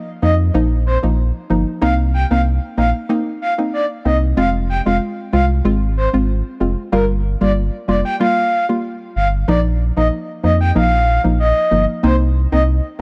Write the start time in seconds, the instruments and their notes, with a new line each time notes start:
0.22 sub bass F2, synth pluck F3 A#3 D#4, soft synth lead D#5
0.54 sub bass A#1, synth pluck F3 A#3 D#4
0.86 soft synth lead C5
1.03 sub bass A#1, synth pluck F3 A#3 D#4
1.50 sub bass G1, synth pluck F3 A#3 D#4
1.81 sub bass C2, synth pluck A#3 C4 D#4, soft synth lead F5
2.14 soft synth lead G5
2.31 sub bass C2, synth pluck A#3 C4 D#4, soft synth lead F5
2.77 sub bass A#1, synth pluck A#3 C4 D#4, soft synth lead F5
3.09 synth pluck A#3 C4 D#4
3.42 soft synth lead F5
3.58 synth pluck A#3 C4 D#4
3.73 soft synth lead D5
4.05 sub bass C2, synth pluck A#3 C4 D#4, soft synth lead D#5
4.37 sub bass F1, synth pluck G#3 C4 F4, soft synth lead F5
4.69 soft synth lead G5
4.86 sub bass F1, synth pluck G#3 C4 F4, soft synth lead F5
5.33 sub bass C2, synth pluck G#3 C4 F4, soft synth lead F5
5.64 sub bass G#1, synth pluck G#3 C4 F4
5.97 soft synth lead C5
6.13 sub bass G#1, synth pluck G#3 C4 F4
6.60 sub bass F1, synth pluck G#3 C4 F4
6.92 sub bass G1, synth pluck G3 A#3 F4, soft synth lead A#4
7.41 sub bass G1, synth pluck G3 A#3 F4, soft synth lead D5
7.88 sub bass F1, synth pluck G3 A#3 F4, soft synth lead D5
8.05 soft synth lead G5
8.20 synth pluck G3 A#3 F4, soft synth lead F5
8.69 synth pluck G3 A#3 F4
9.16 sub bass G1, soft synth lead F5
9.48 sub bass A#1, synth pluck F3 A#3 D#4, soft synth lead D5
9.97 sub bass A#1, synth pluck F3 A#3 D#4, soft synth lead D#5
10.43 sub bass F2, synth pluck F3 A#3 D#4, soft synth lead D#5
10.61 soft synth lead G5
10.75 sub bass A#1, synth pluck F3 A#3 D#4, soft synth lead F5
11.24 sub bass A#1, synth pluck F3 A#3 D#4
11.40 soft synth lead D#5
11.71 sub bass G1, synth pluck F3 A#3 D#4
12.03 sub bass C2, synth pluck A#3 C4 D#4, soft synth lead C5
12.52 sub bass C2, synth pluck A#3 C4 D#4, soft synth lead D#5